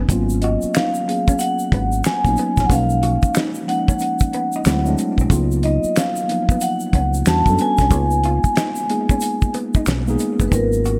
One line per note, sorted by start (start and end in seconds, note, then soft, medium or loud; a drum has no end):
0.00 0.09 F#3 medium
0.00 0.10 B3 medium
0.00 0.10 D#4 medium
0.09 0.56 G#1 medium
0.09 0.92 F#3 medium
0.09 0.92 A#3 medium
0.09 0.93 B3 medium
0.09 0.93 C#4 medium
0.09 0.94 F4 medium
0.09 kick loud
0.09 closed hi-hat medium
0.09 shaker medium
0.30 shaker soft
0.42 0.58 F#4 medium
0.42 0.75 D#5 medium
0.42 closed hi-hat medium
0.62 muted fingered electric bass stroke soft
0.62 shaker soft
0.74 0.90 D#4 medium
0.74 1.41 F5 medium
0.74 finger snap medium
0.74 snare loud
0.74 closed hi-hat medium
0.74 shaker medium
0.94 shaker soft
1.06 2.00 F#3 medium
1.06 2.01 A#3 medium
1.06 2.01 B3 medium
1.06 2.02 C#4 medium
1.06 2.02 G#4 medium
1.06 muted hollow-body jazz guitar stroke soft
1.06 closed hi-hat medium
1.28 1.37 C#4 medium
1.28 kick loud
1.28 shaker soft
1.39 2.06 F#5 loud
1.39 closed hi-hat medium
1.39 shaker medium
1.59 shaker soft
1.72 2.01 G#1 medium
1.72 1.88 B3 medium
1.72 kick medium
1.72 closed hi-hat medium
1.92 shaker soft
2.04 2.67 G#5 loud
2.04 finger snap medium
2.04 muted hollow-body jazz guitar stroke soft
2.04 snare loud
2.04 closed hi-hat medium
2.04 shaker medium
2.25 2.35 A#1 medium
2.25 2.63 F#3 medium
2.25 2.63 A#3 medium
2.25 2.64 B3 medium
2.25 2.64 C#4 medium
2.25 2.64 D#4 medium
2.25 kick medium
2.25 closed hi-hat soft
2.25 shaker soft
2.37 2.53 B3 medium
2.37 closed hi-hat medium
2.37 shaker soft
2.57 2.68 A#1 medium
2.57 2.68 C#4 medium
2.57 kick medium
2.57 snare soft
2.57 shaker soft
2.65 3.53 F3 medium
2.65 2.70 F#5 medium
2.70 3.17 B1 loud
2.70 3.53 G#3 medium
2.70 3.53 A#3 medium
2.70 3.54 C#4 medium
2.70 2.85 C#4 medium
2.70 3.54 D#4 medium
2.70 3.32 F5 medium
2.70 kick loud
2.70 closed hi-hat medium
2.70 shaker medium
2.90 shaker soft
3.03 3.17 F#4 medium
3.03 closed hi-hat medium
3.22 muted fingered electric bass stroke soft
3.22 kick medium
3.22 shaker soft
3.35 3.50 D#4 medium
3.35 finger snap medium
3.35 snare loud
3.35 closed hi-hat medium
3.35 shaker medium
3.54 shaker soft
3.66 4.61 F3 medium
3.66 4.61 G#3 medium
3.66 4.62 A#3 medium
3.66 4.62 C#4 medium
3.66 4.63 D#4 medium
3.66 4.94 F#5 medium
3.66 muted hollow-body jazz guitar stroke soft
3.66 closed hi-hat medium
3.88 3.97 C#4 medium
3.88 kick medium
3.88 shaker soft
3.99 muted hollow-body jazz guitar stroke soft
3.99 closed hi-hat medium
3.99 shaker medium
4.19 kick medium
4.19 closed hi-hat soft
4.19 shaker soft
4.33 4.48 B3 medium
4.33 closed hi-hat medium
4.52 4.63 D#4 medium
4.52 shaker soft
4.65 4.94 D2 medium
4.65 4.82 F#3 loud
4.65 4.83 G#3 medium
4.65 4.83 A3 medium
4.65 4.83 C4 medium
4.65 4.82 D4 medium
4.65 4.84 E4 loud
4.65 finger snap medium
4.65 snare loud
4.65 closed hi-hat medium
4.65 shaker medium
4.85 5.23 F#3 medium
4.85 5.23 G#3 medium
4.85 5.24 A3 medium
4.85 5.24 C4 medium
4.85 5.25 D4 loud
4.85 shaker soft
4.98 muted hollow-body jazz guitar stroke soft
4.98 closed hi-hat medium
4.98 shaker soft
5.18 5.29 B1 medium
5.18 5.29 C4 medium
5.18 kick medium
5.18 shaker soft
5.30 5.77 C#2 loud
5.30 5.38 F3 medium
5.30 6.14 A#3 medium
5.30 6.14 B3 medium
5.30 6.15 D#4 medium
5.30 6.15 F4 medium
5.30 kick loud
5.30 closed hi-hat medium
5.30 shaker medium
5.36 6.17 F#3 medium
5.51 shaker soft
5.63 5.79 D#4 medium
5.63 5.94 D#5 medium
5.63 closed hi-hat medium
5.84 muted fingered electric bass stroke soft
5.84 shaker soft
5.96 6.12 C#4 medium
5.96 6.63 F5 medium
5.96 finger snap medium
5.96 snare loud
5.96 closed hi-hat medium
5.96 shaker medium
6.16 shaker soft
6.27 7.24 F3 medium
6.27 7.22 F#3 medium
6.27 7.22 A#3 medium
6.27 7.22 B3 medium
6.27 7.23 D#4 medium
6.27 closed hi-hat medium
6.32 muted hollow-body jazz guitar stroke soft
6.49 6.59 B3 medium
6.49 kick loud
6.49 shaker medium
6.61 7.29 F#5 medium
6.61 closed hi-hat medium
6.61 shaker medium
6.80 shaker soft
6.93 7.22 C#2 loud
6.93 7.09 C#4 medium
6.93 kick medium
6.93 closed hi-hat medium
7.14 shaker soft
7.25 7.45 E2 medium
7.25 7.43 G3 medium
7.25 7.43 B3 medium
7.25 7.44 C#4 medium
7.25 7.44 D4 medium
7.25 7.44 F#4 medium
7.25 7.61 A5 loud
7.25 finger snap medium
7.25 muted hollow-body jazz guitar stroke soft
7.25 snare loud
7.25 closed hi-hat medium
7.25 shaker medium
7.46 7.57 F#2 medium
7.46 7.84 G3 medium
7.46 7.85 B3 medium
7.46 7.85 C#4 medium
7.46 7.86 D4 medium
7.46 7.86 A4 medium
7.46 kick medium
7.46 closed hi-hat medium
7.46 shaker soft
7.58 7.75 B3 medium
7.58 9.51 G#5 medium
7.58 closed hi-hat medium
7.58 shaker soft
7.78 7.91 B1 medium
7.78 7.89 C#4 medium
7.78 kick medium
7.78 snare soft
7.78 shaker soft
7.90 8.38 C#2 loud
7.90 8.74 G#3 medium
7.90 8.74 A#3 medium
7.90 8.75 B3 medium
7.90 8.07 C#4 medium
7.90 8.75 D#4 medium
7.90 8.76 F4 medium
7.90 kick loud
7.90 closed hi-hat medium
7.90 shaker medium
8.11 shaker soft
8.24 8.39 F4 medium
8.24 closed hi-hat medium
8.44 muted fingered electric bass stroke soft
8.44 kick medium
8.44 shaker soft
8.56 8.71 D#4 medium
8.56 finger snap medium
8.56 snare loud
8.56 closed hi-hat medium
8.56 shaker medium
8.76 shaker soft
8.88 9.82 G#3 medium
8.88 9.83 A#3 medium
8.88 9.83 B3 medium
8.88 9.84 D#4 medium
8.88 9.84 G#4 medium
8.88 muted hollow-body jazz guitar stroke soft
8.88 closed hi-hat medium
9.09 9.19 C#4 medium
9.09 kick medium
9.09 shaker medium
9.21 muted hollow-body jazz guitar stroke soft
9.21 closed hi-hat medium
9.21 shaker medium
9.42 kick medium
9.42 shaker soft
9.54 9.69 B3 medium
9.54 closed hi-hat medium
9.74 9.84 D#4 medium
9.74 kick medium
9.74 shaker soft
9.86 10.16 B1 medium
9.86 10.03 C#4 medium
9.86 finger snap medium
9.86 snare loud
9.86 closed hi-hat medium
9.86 shaker medium
10.07 10.45 G#3 medium
10.07 10.46 A#3 medium
10.07 10.46 B3 medium
10.07 10.46 D#4 medium
10.07 10.47 G#4 loud
10.07 shaker soft
10.19 muted hollow-body jazz guitar stroke soft
10.19 closed hi-hat medium
10.19 shaker soft
10.40 10.51 F#1 medium
10.40 10.49 B3 medium
10.40 kick medium
10.40 shaker medium
10.48 10.52 B4 medium
10.48 kick loud
10.52 10.99 G#1 loud
10.52 10.99 F#3 medium
10.52 10.99 A#3 medium
10.52 10.99 B3 medium
10.52 10.99 C#4 medium
10.52 10.99 F4 medium
10.52 10.99 A#4 medium
10.52 closed hi-hat medium
10.52 shaker medium
10.73 shaker soft
10.85 10.99 F#4 medium
10.85 closed hi-hat medium
10.85 shaker soft